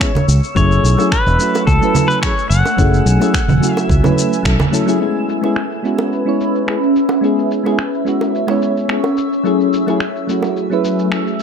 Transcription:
Already playing: C#5 C#6 E6
0.00 B3 C#4 E4 G#4, finger snap, kick, shaker
0.15 high bongo, low conga, shaker
0.28 C#2, shaker
0.43 shaker
0.55 F#1 F#3 A3 C#4 E4 G#4 C#5 G#5, kick, shaker
0.72 shaker
0.84 B1, shaker
0.97 F#3 A3 C#4 E4, high bongo, shaker
1.01 G#4
1.12 B4, finger snap, kick, shaker
1.26 E1, shaker
1.38 F#3 A3 C#4 E4 F#4, shaker
1.55 high bongo, shaker
1.67 C#2 A4, kick, shaker
1.81 F#3 A3 C#4 E4 B4, shaker
1.95 high bongo, low conga, shaker
2.08 B4, shaker
2.21 F#3 A3 C#4 E4 G#4 C#5, finger snap, kick, shaker
2.38 shaker
2.50 F#1 F#5, shaker
2.65 high bongo, shaker
2.77 F#1 F#3 A3 C#4 E4 G#4, kick, shaker
2.94 shaker
3.06 B1, shaker
3.19 F#3 A3 C#4 E4 G#4, high bongo, shaker
3.34 finger snap, kick, shaker
3.48 E1, low conga, shaker
3.60 F#3 A3 C#4 E4 F#4, shaker
3.75 E5, high bongo, shaker
3.89 C#2, kick, shaker
4.02 F#3 A3 C#4 E4, high bongo, low conga, shaker
4.06 B4
4.18 shaker
4.33 shaker
4.43 B1 F#3 A3 C#4 E4 A4, finger snap, kick, shaker
4.60 high bongo, low conga, shaker
4.71 F#3 A3 C#4 E4 A4, shaker
4.86 F#3 A3 C#4 E4 G#4, shaker
4.99 G#3 B3 C#4 E4 B4 E5, shaker
5.03 G#4
5.16 shaker
5.29 shaker
5.42 G#3 B3 C#4 E4, high bongo, shaker
5.46 G#4
5.56 finger snap, shaker
5.72 shaker
5.83 G#3 B3 C#4 E4, shaker
5.87 F#4
5.98 high bongo, shaker
6.13 shaker
6.25 G#3 B3 C#4 E4 C#5, shaker
6.41 shaker
6.55 shaker
6.67 G#3 B3 C#4 E4 G#4, finger snap, shaker
6.83 shaker
6.96 shaker
7.09 high bongo, shaker
7.21 G#3 B3 C#4 E4 G#4 C#5, shaker
7.39 shaker
7.51 shaker
7.64 G#3 B3 C#4 E4 G#4, high bongo, shaker
7.79 finger snap, shaker
7.94 shaker
8.05 G#3 B3 C#4 E4 F#4, shaker
8.21 high bongo, shaker
8.35 shaker
8.47 G#3 B3 C#4 E4 C#5, high bongo, shaker
8.62 shaker
8.77 shaker
8.88 G#3 B3 C#4 E4 G#4, finger snap, shaker
9.04 high bongo, shaker
9.17 shaker
9.33 shaker
9.44 F#3 A3 C#4 E4 G#4, shaker
9.60 shaker
9.73 shaker
9.86 F#3 A3 C#4 E4 G#4, high bongo, shaker
10.00 finger snap, shaker
10.16 shaker
10.27 F#3 A3 C#4 E4 F#4, shaker
10.43 high bongo, shaker
10.57 shaker
10.70 F#3 A3 C#4 E4 B4, shaker
10.85 shaker
10.99 shaker
11.11 F#3 A3 C#4 E4 G#4, finger snap, shaker
11.27 shaker

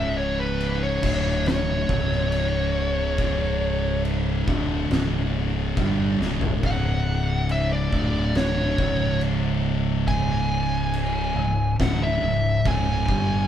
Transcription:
Already playing: C#1 C#2 G#2 C#3 E5
0.18 C#5
0.39 B4
0.60 crash
0.83 C#5
1.02 D1 D2 A2 D3, kick, crash
1.46 C#5, snare, crash
1.89 C#1 C#2 G#2 C#3, kick
2.12 snare
2.32 crash
3.18 kick, crash
4.05 crash
4.48 D1 D2 A2 D3, kick
4.90 C#1 C#2 G#2 C#3, snare, crash
5.77 G1 G2 D3 G3, kick, crash
6.19 C#1 C#2 G#2 C#3, snare
6.41 floor tom
6.63 C#1 C#2 G#2 C#3 F#5, kick, crash
7.49 E5, crash
7.73 D5
7.92 D1 D2 A2 D3, kick
8.35 C#5, snare, crash
8.78 C#1 C#2 G#2 C#3, kick
9.21 crash
10.08 G#5, kick, crash
10.94 crash
11.35 C#1 C#2 G#2
11.79 D1 D2 A2 D3 F#5, kick, snare, crash
12.03 E5
12.21 C#1 C#2 G#2
12.65 C#1 C#2 G#2 C#3 G#5, kick, crash
13.08 G1 G2 D3 G3, kick

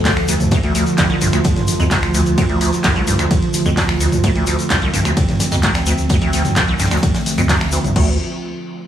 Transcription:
Already playing: D2 D3 F3 A3 A4
0.05 D2, kick, snare, clap, closed hi-hat, open hi-hat, ride, shaker
0.16 D2, finger snap, snare, closed hi-hat
0.28 A1 D2, closed hi-hat, open hi-hat, shaker
0.40 D2, closed hi-hat, mid tom, shaker
0.51 D2 F4, kick, closed hi-hat, ride, shaker
0.63 D2, closed hi-hat
0.75 D2, snare, closed hi-hat, open hi-hat, shaker
0.86 closed hi-hat, shaker
0.98 C2, kick, snare, clap, closed hi-hat, ride, shaker
1.10 C2, closed hi-hat
1.21 C2 G2, snare, closed hi-hat, open hi-hat, shaker
1.33 D2, finger snap, closed hi-hat, shaker
1.44 kick, closed hi-hat, ride, shaker
1.56 snare, closed hi-hat, mid tom
1.67 A1, closed hi-hat, open hi-hat, shaker
1.80 D2 F2, closed hi-hat, shaker
1.91 D2, kick, snare, clap, closed hi-hat, ride, shaker
2.03 finger snap, snare, closed hi-hat
2.14 D2, closed hi-hat, open hi-hat, shaker
2.26 D2, closed hi-hat, shaker
2.38 D2, kick, closed hi-hat, ride, shaker
2.49 D2, closed hi-hat
2.61 D2, closed hi-hat, open hi-hat, shaker
2.73 snare, closed hi-hat, shaker
2.83 C2, kick, snare, clap, closed hi-hat, ride, shaker
2.96 C2, closed hi-hat
3.07 C2 G2, closed hi-hat, open hi-hat, shaker
3.19 D2, finger snap, closed hi-hat, shaker
3.31 kick, closed hi-hat, ride, shaker
3.42 closed hi-hat
3.54 A1, closed hi-hat, open hi-hat, shaker
3.66 D2 F2, closed hi-hat, shaker
3.77 D2, kick, snare, clap, closed hi-hat, open hi-hat, ride, shaker
3.89 finger snap, snare, closed hi-hat
4.00 D2, closed hi-hat, open hi-hat, shaker
4.12 D2, closed hi-hat, mid tom, shaker
4.24 D2 C4, kick, closed hi-hat, ride, shaker
4.35 D2, closed hi-hat
4.47 D2, snare, closed hi-hat, open hi-hat, shaker
4.59 closed hi-hat, shaker
4.70 C2, kick, snare, clap, closed hi-hat, ride, shaker
4.82 C2, closed hi-hat
4.94 C2 G2, closed hi-hat, open hi-hat, shaker
5.05 D2, finger snap, closed hi-hat, shaker
5.17 kick, closed hi-hat, ride, shaker
5.29 snare, closed hi-hat, mid tom
5.40 A1, snare, closed hi-hat, open hi-hat, shaker
5.52 D2 F2, snare, closed hi-hat, shaker
5.63 D2, kick, clap, closed hi-hat, ride, shaker
5.75 finger snap, snare, closed hi-hat
5.86 D2, closed hi-hat, open hi-hat, shaker
5.98 D2, closed hi-hat, shaker
6.09 D2, kick, closed hi-hat, ride, shaker
6.22 D2, closed hi-hat
6.33 D2, closed hi-hat, open hi-hat, shaker
6.45 snare, closed hi-hat, mid tom, shaker
6.56 C2, kick, snare, clap, closed hi-hat, ride, shaker
6.68 C2, closed hi-hat
6.79 C2 G2, snare, closed hi-hat, open hi-hat, shaker
6.86 snare, closed hi-hat
6.91 D2, finger snap, snare, closed hi-hat, shaker
6.97 snare, closed hi-hat
7.03 kick, closed hi-hat, ride, shaker
7.14 snare, closed hi-hat, open hi-hat
7.26 A1, snare, open hi-hat, shaker
7.38 D2 F2, closed hi-hat, shaker
7.49 D2, kick, snare, clap, closed hi-hat, open hi-hat, ride, shaker
7.61 finger snap, snare, closed hi-hat
7.72 D2, closed hi-hat, open hi-hat, shaker
7.84 C2, closed hi-hat, mid tom, shaker
7.96 D2, kick, crash

